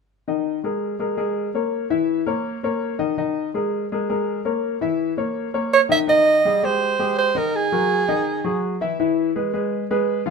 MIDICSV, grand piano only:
0, 0, Header, 1, 2, 480
1, 0, Start_track
1, 0, Key_signature, -4, "major"
1, 0, Tempo, 362976
1, 362, Time_signature, 4, 2, 24, 8
1, 13623, End_track
2, 0, Start_track
2, 0, Title_t, "Grand piano"
2, 0, Program_c, 0, 0
2, 365, Note_on_c, 0, 51, 63
2, 371, Note_on_c, 0, 75, 60
2, 373, Note_on_c, 0, 63, 58
2, 757, Note_off_c, 0, 51, 0
2, 761, Note_off_c, 0, 75, 0
2, 762, Note_off_c, 0, 63, 0
2, 841, Note_on_c, 0, 56, 55
2, 851, Note_on_c, 0, 70, 60
2, 854, Note_on_c, 0, 68, 56
2, 1235, Note_off_c, 0, 56, 0
2, 1241, Note_off_c, 0, 70, 0
2, 1243, Note_off_c, 0, 68, 0
2, 1315, Note_on_c, 0, 56, 65
2, 1318, Note_on_c, 0, 68, 55
2, 1324, Note_on_c, 0, 70, 62
2, 1514, Note_off_c, 0, 56, 0
2, 1517, Note_off_c, 0, 68, 0
2, 1520, Note_off_c, 0, 70, 0
2, 1551, Note_on_c, 0, 56, 68
2, 1554, Note_on_c, 0, 68, 65
2, 1561, Note_on_c, 0, 70, 66
2, 1949, Note_off_c, 0, 56, 0
2, 1951, Note_off_c, 0, 68, 0
2, 1955, Note_off_c, 0, 70, 0
2, 2038, Note_on_c, 0, 58, 55
2, 2046, Note_on_c, 0, 70, 59
2, 2051, Note_on_c, 0, 73, 57
2, 2433, Note_off_c, 0, 58, 0
2, 2438, Note_off_c, 0, 70, 0
2, 2441, Note_off_c, 0, 73, 0
2, 2516, Note_on_c, 0, 52, 69
2, 2516, Note_on_c, 0, 64, 76
2, 2521, Note_on_c, 0, 76, 73
2, 2912, Note_off_c, 0, 52, 0
2, 2912, Note_off_c, 0, 64, 0
2, 2915, Note_off_c, 0, 76, 0
2, 2993, Note_on_c, 0, 58, 73
2, 2996, Note_on_c, 0, 70, 72
2, 3008, Note_on_c, 0, 73, 64
2, 3390, Note_off_c, 0, 58, 0
2, 3392, Note_off_c, 0, 70, 0
2, 3399, Note_off_c, 0, 73, 0
2, 3481, Note_on_c, 0, 58, 69
2, 3491, Note_on_c, 0, 70, 67
2, 3492, Note_on_c, 0, 73, 69
2, 3875, Note_off_c, 0, 58, 0
2, 3881, Note_off_c, 0, 70, 0
2, 3882, Note_off_c, 0, 73, 0
2, 3949, Note_on_c, 0, 63, 65
2, 3953, Note_on_c, 0, 51, 72
2, 3955, Note_on_c, 0, 75, 75
2, 4151, Note_off_c, 0, 63, 0
2, 4154, Note_off_c, 0, 51, 0
2, 4155, Note_off_c, 0, 75, 0
2, 4199, Note_on_c, 0, 51, 63
2, 4204, Note_on_c, 0, 63, 67
2, 4208, Note_on_c, 0, 75, 69
2, 4594, Note_off_c, 0, 51, 0
2, 4597, Note_off_c, 0, 63, 0
2, 4599, Note_off_c, 0, 75, 0
2, 4684, Note_on_c, 0, 56, 64
2, 4693, Note_on_c, 0, 68, 64
2, 4696, Note_on_c, 0, 70, 57
2, 5077, Note_off_c, 0, 56, 0
2, 5083, Note_off_c, 0, 68, 0
2, 5084, Note_off_c, 0, 70, 0
2, 5184, Note_on_c, 0, 56, 69
2, 5187, Note_on_c, 0, 68, 62
2, 5196, Note_on_c, 0, 70, 61
2, 5372, Note_off_c, 0, 56, 0
2, 5374, Note_off_c, 0, 68, 0
2, 5379, Note_off_c, 0, 70, 0
2, 5415, Note_on_c, 0, 68, 62
2, 5417, Note_on_c, 0, 56, 71
2, 5420, Note_on_c, 0, 70, 69
2, 5803, Note_off_c, 0, 68, 0
2, 5804, Note_off_c, 0, 56, 0
2, 5807, Note_off_c, 0, 70, 0
2, 5886, Note_on_c, 0, 70, 64
2, 5887, Note_on_c, 0, 58, 60
2, 5892, Note_on_c, 0, 73, 54
2, 6278, Note_off_c, 0, 70, 0
2, 6279, Note_off_c, 0, 58, 0
2, 6282, Note_off_c, 0, 73, 0
2, 6362, Note_on_c, 0, 64, 70
2, 6364, Note_on_c, 0, 52, 74
2, 6375, Note_on_c, 0, 76, 77
2, 6756, Note_off_c, 0, 64, 0
2, 6757, Note_off_c, 0, 52, 0
2, 6763, Note_off_c, 0, 76, 0
2, 6837, Note_on_c, 0, 58, 64
2, 6846, Note_on_c, 0, 70, 60
2, 6849, Note_on_c, 0, 73, 68
2, 7233, Note_off_c, 0, 58, 0
2, 7238, Note_off_c, 0, 70, 0
2, 7240, Note_off_c, 0, 73, 0
2, 7326, Note_on_c, 0, 70, 66
2, 7329, Note_on_c, 0, 73, 71
2, 7331, Note_on_c, 0, 58, 65
2, 7718, Note_off_c, 0, 70, 0
2, 7720, Note_off_c, 0, 73, 0
2, 7721, Note_off_c, 0, 58, 0
2, 7789, Note_on_c, 0, 51, 71
2, 7790, Note_on_c, 0, 63, 71
2, 7801, Note_on_c, 0, 75, 69
2, 7992, Note_off_c, 0, 51, 0
2, 7992, Note_off_c, 0, 63, 0
2, 7999, Note_off_c, 0, 75, 0
2, 8031, Note_on_c, 0, 51, 68
2, 8036, Note_on_c, 0, 63, 69
2, 8040, Note_on_c, 0, 75, 68
2, 8430, Note_off_c, 0, 51, 0
2, 8432, Note_off_c, 0, 63, 0
2, 8435, Note_off_c, 0, 75, 0
2, 8531, Note_on_c, 0, 55, 66
2, 8532, Note_on_c, 0, 67, 58
2, 8540, Note_on_c, 0, 68, 62
2, 8725, Note_off_c, 0, 55, 0
2, 8725, Note_off_c, 0, 67, 0
2, 8730, Note_off_c, 0, 68, 0
2, 8768, Note_on_c, 0, 56, 66
2, 8768, Note_on_c, 0, 67, 65
2, 8774, Note_on_c, 0, 68, 67
2, 9159, Note_off_c, 0, 67, 0
2, 9160, Note_off_c, 0, 56, 0
2, 9163, Note_off_c, 0, 68, 0
2, 9247, Note_on_c, 0, 56, 71
2, 9249, Note_on_c, 0, 67, 78
2, 9255, Note_on_c, 0, 68, 72
2, 9639, Note_off_c, 0, 56, 0
2, 9640, Note_off_c, 0, 67, 0
2, 9644, Note_off_c, 0, 68, 0
2, 9717, Note_on_c, 0, 51, 67
2, 9720, Note_on_c, 0, 63, 76
2, 9735, Note_on_c, 0, 75, 69
2, 10113, Note_off_c, 0, 51, 0
2, 10115, Note_off_c, 0, 63, 0
2, 10124, Note_off_c, 0, 75, 0
2, 10211, Note_on_c, 0, 54, 62
2, 10212, Note_on_c, 0, 70, 62
2, 10218, Note_on_c, 0, 66, 69
2, 10602, Note_off_c, 0, 54, 0
2, 10602, Note_off_c, 0, 70, 0
2, 10605, Note_off_c, 0, 66, 0
2, 10688, Note_on_c, 0, 63, 84
2, 10690, Note_on_c, 0, 51, 72
2, 10695, Note_on_c, 0, 75, 76
2, 11079, Note_off_c, 0, 63, 0
2, 11081, Note_off_c, 0, 51, 0
2, 11084, Note_off_c, 0, 75, 0
2, 11165, Note_on_c, 0, 54, 69
2, 11166, Note_on_c, 0, 66, 67
2, 11178, Note_on_c, 0, 68, 69
2, 11558, Note_off_c, 0, 54, 0
2, 11558, Note_off_c, 0, 66, 0
2, 11566, Note_off_c, 0, 68, 0
2, 11651, Note_on_c, 0, 64, 79
2, 11653, Note_on_c, 0, 52, 66
2, 11660, Note_on_c, 0, 76, 76
2, 11844, Note_off_c, 0, 64, 0
2, 11846, Note_off_c, 0, 52, 0
2, 11850, Note_off_c, 0, 76, 0
2, 11896, Note_on_c, 0, 64, 75
2, 11897, Note_on_c, 0, 52, 72
2, 11901, Note_on_c, 0, 76, 65
2, 12284, Note_off_c, 0, 64, 0
2, 12285, Note_off_c, 0, 52, 0
2, 12287, Note_off_c, 0, 76, 0
2, 12373, Note_on_c, 0, 68, 66
2, 12376, Note_on_c, 0, 56, 71
2, 12376, Note_on_c, 0, 71, 58
2, 12566, Note_off_c, 0, 68, 0
2, 12568, Note_off_c, 0, 56, 0
2, 12568, Note_off_c, 0, 71, 0
2, 12607, Note_on_c, 0, 56, 71
2, 12612, Note_on_c, 0, 68, 66
2, 12618, Note_on_c, 0, 71, 62
2, 12999, Note_off_c, 0, 56, 0
2, 13002, Note_off_c, 0, 68, 0
2, 13006, Note_off_c, 0, 71, 0
2, 13099, Note_on_c, 0, 56, 76
2, 13103, Note_on_c, 0, 71, 80
2, 13104, Note_on_c, 0, 68, 75
2, 13487, Note_off_c, 0, 56, 0
2, 13489, Note_off_c, 0, 68, 0
2, 13489, Note_off_c, 0, 71, 0
2, 13565, Note_on_c, 0, 53, 77
2, 13573, Note_on_c, 0, 65, 70
2, 13575, Note_on_c, 0, 77, 72
2, 13623, Note_off_c, 0, 53, 0
2, 13623, Note_off_c, 0, 65, 0
2, 13623, Note_off_c, 0, 77, 0
2, 13623, End_track
0, 0, End_of_file